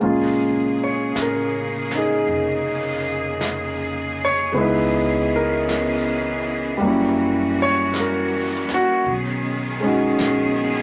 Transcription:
0.00 upright bass A#1, cello section C#3 A#3 G#4, grand piano G#3 A#3 C#4 F4, brush sweep
0.84 grand piano C#5
1.15 upright bass A1, brush sweep, snare, hi-hat pedal
1.22 grand piano A#4
1.91 grand piano D#4, snare
1.98 grand piano G#4
2.28 upright bass F1, brush sweep
3.41 brush sweep, snare, hi-hat pedal
4.25 grand piano C#5
4.52 upright bass C#2, grand piano G#3 B3 D#4, brush sweep
4.57 cello section E3 B3 C#4, grand piano E4 B4
5.36 grand piano A#4
5.69 brush sweep, snare, hi-hat pedal
6.77 upright bass F#2, grand piano G3 A#3, brush sweep
6.82 cello section G3 A#3 F#4, grand piano C#4
6.88 grand piano E4
7.62 grand piano C#5
7.94 brush sweep, snare, hi-hat pedal
8.00 grand piano A#4
8.69 muted upright bass stroke, snare
8.74 grand piano F#4
9.06 upright bass B1, cello section D#3 B3 C#4, brush sweep
9.10 cello section G#4
9.80 grand piano G#3 C#4 D#4
9.87 grand piano F#4
10.19 upright bass A#1, brush sweep, snare, hi-hat pedal

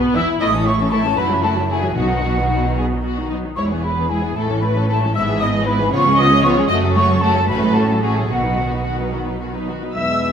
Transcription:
Already playing: viola section B3, violin section B3 B4
0.14 double bass section E2, cello section E3, violin section E4 E5, viola section E4, flute section E6
0.39 double bass section A1, cello section A2, viola section A3, violin section E4 D#5, flute section D#6
0.54 viola section E3 C#4, violin section C#4 A4
0.66 viola section A3, violin section E4 C#5, flute section C#6
0.80 viola section E3 C#4, violin section C#4 A4
0.91 viola section A3, violin section E4 A4, flute section A5
1.05 viola section E3 C#4, violin section C#4 A4
1.15 double bass section F#1, cello section F#2, viola section F#3 A3, violin section E4 F#4 B4, flute section B5
1.31 viola section E3 F#3, violin section C#4 E4
1.43 viola section F#3 A3, violin section E4 F#4 A4, flute section A5
1.57 viola section E3 F#3, violin section C#4 E4
1.70 viola section F#3 A3, violin section E4 F#4 G#4, flute section G#5
1.82 viola section E3 F#3, violin section C#4 E4
1.89 flute section G#5
1.95 double bass section B1, timpani B2, cello section B2, viola section F#3 B3, violin section D#4 F#4, flute section F#5
2.08 viola section D#3 D#4, violin section B3 D#4
2.22 viola section F#3 B3, violin section D#4 F#4
2.37 viola section D#3 D#4, violin section B3 D#4
2.49 viola section F#3 B3, violin section D#4 F#4
2.63 viola section D#3 D#4, violin section B3 D#4
2.77 viola section F#3 B3, violin section G#4
2.92 viola section D#3 D#4
3.03 viola section F#3 B3, violin section F#4
3.18 viola section D#3 D#4
3.30 viola section F#3 B3, violin section D#4
3.44 viola section D#3 D#4
3.56 double bass section E1, cello section E2, viola section G#3, violin section E4 C#5, flute section C#6
3.70 viola section E3 B3, violin section B3 G#4
3.83 viola section G#3, violin section E4 B4, flute section B5
3.97 viola section E3 B3, violin section B3 G#4
4.09 viola section G#3, violin section E4 G#4, flute section G#5
4.23 viola section E3 B3, violin section B3 G#4
4.35 double bass section A1, cello section A2, viola section A3, violin section E4 A4, flute section A5
4.49 viola section E3 C#4, violin section C#4 A4
4.60 viola section A3, violin section E4 B4, flute section B5
4.75 viola section E3 C#4, violin section C#4 A4
4.88 viola section A3, violin section E4 A4, flute section A5
5.02 viola section E3 C#4, violin section C#4 A4
5.14 double bass section G#1, cello section G#2, viola section G#3 B3, violin section E4 E5, flute section E6
5.28 viola section E3 G#3, violin section B3 G#4
5.40 viola section G#3 B3, violin section E4 D#5, flute section D#6
5.54 viola section E3 G#3, violin section B3 G#4
5.66 viola section G#3 B3, violin section E4 B4, flute section B5
5.79 viola section E3 G#3, violin section B3 G#4
5.91 double bass section C#2, cello section C#3, viola section F3 B3, violin section B3 F4 C#5, flute section C#6
6.04 viola section G#3 C#4, violin section C#4 G#4
6.17 viola section F3 B3, violin section B3 F4 D#5, flute section D#6
6.30 viola section G#3 C#4, violin section C#4 G#4
6.43 viola section F3 B3, violin section B3 F4 C#5, flute section C#6
6.56 viola section G#3 C#4, violin section C#4 G#4
6.68 double bass section F#1, cello section F#2, viola section A3, violin section A3 F#4 D#5, flute section D#6
6.82 viola section F#3, violin section C#4 A4
6.94 viola section A3, violin section A3 F#4 C#5, flute section C#6
7.09 viola section F#3, violin section C#4 A4
7.20 violin section A3 F#4 A4, viola section A3, flute section A5
7.35 viola section F#3, violin section C#4 A4
7.48 double bass section A1, cello section A2, violin section A3 F#4 B4, viola section A3 C#4, flute section B5
7.62 viola section F#3 A3, violin section C#4 A4
7.74 violin section A3 F#4 A4, viola section A3 C#4, flute section A5
7.88 viola section F#3 A3, violin section C#4 A4
8.02 violin section A3 F#4 G#4, viola section A3 C#4, flute section G#5
8.16 viola section F#3 A3, violin section C#4 A4
8.30 double bass section B1, cello section B2, viola section D#3 B3, violin section F#4, flute section F#5
8.43 viola section F#3 D#4, violin section D#4 B4
8.57 viola section D#3 B3, violin section F#4
8.71 viola section F#3 D#4, violin section D#4 B4
8.85 viola section D#3 B3, violin section F#4
8.98 viola section F#3 D#4, violin section D#4 B4
9.12 viola section D#3 B3, violin section F#4
9.26 viola section F#3 D#4, violin section D#4 B4
9.40 viola section D#3 B3, violin section F#4
9.53 viola section F#3 D#4, violin section D#4 B4
9.68 viola section D#3 B3, violin section F#4
9.81 viola section F#3 D#4, violin section D#4 B4
9.95 double bass section E1, cello section E2, french horn section G#3 B3, flute section E5, oboe E5, trumpet section E5, clarinet E5, violin section E6
10.21 viola section G#3 B3, violin section B3 E4

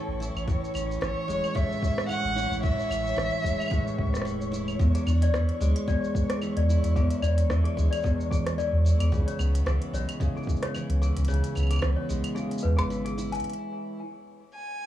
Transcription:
Already playing: steel-string acoustic guitar A2 E3 C#4 E4, violin A4, synth texture C#5 C#6
0.08 sub bass A1
0.20 steel-string acoustic guitar E4, shaker
0.36 sub bass A1, claves, shaker
0.48 sub bass A1, steel-string acoustic guitar A2, kick, shaker
0.64 shaker
0.74 sub bass A1, steel-string acoustic guitar C#4, claves, shaker
0.91 shaker
1.01 sub bass A1, steel-string acoustic guitar E3, violin C#5, cross-stick, shaker
1.28 sub bass E1, steel-string acoustic guitar G#3, shaker
1.44 claves, shaker
1.55 steel-string acoustic guitar A2, violin E5, kick, shaker
1.72 shaker
1.83 kick, shaker
1.98 cross-stick, shaker
2.09 steel-string acoustic guitar E3, violin F#5, claves, shaker
2.24 sub bass A1
2.36 steel-string acoustic guitar E4, shaker
2.51 sub bass A1, shaker
2.63 sub bass A1, steel-string acoustic guitar A2, violin E5, kick, shaker
2.80 shaker
2.90 sub bass A1, steel-string acoustic guitar C#4, claves, shaker
3.07 shaker
3.16 sub bass A1, steel-string acoustic guitar E3, cross-stick, shaker
3.44 sub bass E1, steel-string acoustic guitar G#3, kick, shaker
3.60 claves, shaker
3.62 claves
3.66 claves
3.68 claves
3.70 steel-string acoustic guitar A2, kick, claves, shaker
3.88 shaker
3.98 sub bass C#2, kick
4.12 sub bass E1, cross-stick, shaker
4.17 cross-stick
4.22 steel-string acoustic guitar E3, cross-stick
4.27 shaker
4.42 shaker
4.52 steel-string acoustic guitar E4, shaker
4.68 claves, shaker
4.79 steel-string acoustic guitar E2, sub bass E2, kick, shaker
4.95 toy piano G#4, closed hi-hat, shaker
5.06 sub bass E2, steel-string acoustic guitar D4, claves, shaker
5.22 toy piano D5, closed hi-hat, shaker
5.33 sub bass E2, steel-string acoustic guitar E3, cross-stick, shaker
5.49 closed hi-hat
5.61 sub bass D2, steel-string acoustic guitar G#3, toy piano G#4, shaker
5.76 closed hi-hat, claves, shaker
5.88 steel-string acoustic guitar E2, toy piano D5, kick, shaker
6.04 shaker
6.15 kick, shaker
6.30 toy piano G#4, cross-stick, closed hi-hat, shaker
6.42 steel-string acoustic guitar E3, claves, shaker
6.57 sub bass E2, toy piano D5, closed hi-hat
6.69 steel-string acoustic guitar E4, shaker
6.83 sub bass E2, closed hi-hat, shaker
6.96 sub bass E2, steel-string acoustic guitar E2, toy piano G#4, kick, shaker
7.11 closed hi-hat, shaker
7.22 sub bass E2, steel-string acoustic guitar D4, toy piano D5, claves, shaker
7.38 closed hi-hat, shaker
7.49 sub bass E2, steel-string acoustic guitar E3, cross-stick, shaker
7.64 toy piano G#4, closed hi-hat
7.77 sub bass D2, steel-string acoustic guitar G#3, kick, shaker
7.91 toy piano D5, closed hi-hat, claves, shaker
7.95 shaker
8.00 shaker
8.02 steel-string acoustic guitar E2, shaker
8.04 kick, shaker
8.06 shaker
8.21 shaker
8.30 toy piano G#4, kick, shaker
8.47 cross-stick, closed hi-hat, shaker
8.58 steel-string acoustic guitar E3, toy piano D5, shaker
8.73 sub bass E2
8.85 steel-string acoustic guitar E4, shaker
9.00 sub bass E2, toy piano G#4, closed hi-hat, claves, shaker
9.12 sub bass C#2, steel-string acoustic guitar C#3, kick, shaker
9.27 toy piano C#5, closed hi-hat, shaker
9.39 sub bass C#2, steel-string acoustic guitar B3, claves, shaker
9.55 closed hi-hat, shaker
9.66 sub bass C#2, steel-string acoustic guitar E3, toy piano G#4, cross-stick, shaker
9.82 closed hi-hat
9.93 sub bass B1, steel-string acoustic guitar G#3, toy piano C#5, shaker
10.09 closed hi-hat, claves, shaker
10.20 steel-string acoustic guitar C#3, kick, shaker
10.36 toy piano G#4, shaker
10.43 shaker
10.47 kick, shaker
10.56 shaker
10.63 toy piano C#5, cross-stick, closed hi-hat, shaker
10.75 steel-string acoustic guitar E3, claves, shaker
10.89 sub bass C#2, closed hi-hat
11.02 steel-string acoustic guitar E4, toy piano G#4, shaker
11.17 sub bass C#2, closed hi-hat, shaker
11.25 steel-string acoustic guitar C#3, toy piano C#5, closed hi-hat
11.29 sub bass C#2, shaker
11.34 closed hi-hat
11.44 closed hi-hat, shaker
11.55 sub bass C#2, steel-string acoustic guitar B3, claves, shaker
11.60 claves
11.63 claves
11.67 toy piano G#4, closed hi-hat, claves
11.71 claves, shaker
11.73 claves
11.76 claves
11.79 sub bass C#2, steel-string acoustic guitar E3, cross-stick, claves
11.83 shaker
11.97 toy piano C#5
12.09 sub bass B1, steel-string acoustic guitar G#3, shaker
12.24 closed hi-hat, claves, shaker
12.35 steel-string acoustic guitar C#3, toy piano G#4, shaker
12.51 closed hi-hat, shaker
12.58 shaker
12.63 sub bass E2, toy piano B4
12.77 sub bass G#1, toy piano G#4, cross-stick, closed hi-hat, shaker
12.90 steel-string acoustic guitar E3, shaker
13.05 toy piano G#4, closed hi-hat, shaker
13.18 steel-string acoustic guitar E4, shaker
13.32 toy piano G#5, closed hi-hat, shaker
13.35 closed hi-hat
13.40 closed hi-hat
13.44 closed hi-hat
13.50 closed hi-hat
13.53 closed hi-hat
14.54 violin G#5

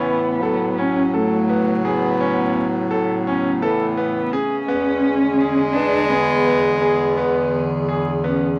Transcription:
Already playing: bass clarinet A2, ambient pad C#3 A3 B3, french horn E3, cello B3, grand piano C#4
0.41 french horn F#3, grand piano A4
0.78 grand piano C#4, cello C#4
1.14 cello A3, grand piano A4
1.49 grand piano B3
1.85 cello B3, grand piano G#4
2.20 grand piano C#4
2.91 grand piano A4
3.26 cello C#4, grand piano C#4
3.62 french horn E3, cello B3, grand piano A4
3.97 grand piano B3
4.31 cello C#4, grand piano G#4
4.68 bass clarinet E2, ambient pad D3 E3 G#4, french horn G#3, grand piano B3
5.40 grand piano G#4
5.73 grand piano B3, cello D4
6.09 cello B3, grand piano G#4
6.46 grand piano B3
6.80 cello B3, grand piano G#4
7.17 grand piano B3
7.89 grand piano G#4
8.24 grand piano B3, cello C#4

